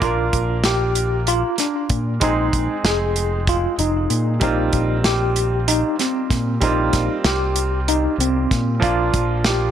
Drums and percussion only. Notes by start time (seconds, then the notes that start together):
0.02 kick, closed hi-hat
0.33 kick, closed hi-hat
0.64 snare, closed hi-hat
0.95 closed hi-hat
1.27 closed hi-hat
1.58 snare, closed hi-hat
1.90 kick, closed hi-hat
2.21 kick, closed hi-hat
2.53 kick, closed hi-hat
2.85 snare, closed hi-hat
3.16 closed hi-hat
3.47 kick, closed hi-hat
3.79 closed hi-hat
4.10 closed hi-hat
4.41 kick, closed hi-hat
4.73 kick, closed hi-hat
5.04 snare, closed hi-hat
5.36 closed hi-hat
5.68 closed hi-hat
5.99 snare, closed hi-hat
6.30 kick, snare, closed hi-hat
6.62 kick, closed hi-hat
6.93 kick, snare, closed hi-hat
7.25 snare, closed hi-hat
7.56 closed hi-hat
7.88 closed hi-hat
8.20 closed hi-hat
8.51 kick, snare, closed hi-hat
8.82 kick, closed hi-hat
9.14 kick, closed hi-hat
9.45 snare, closed hi-hat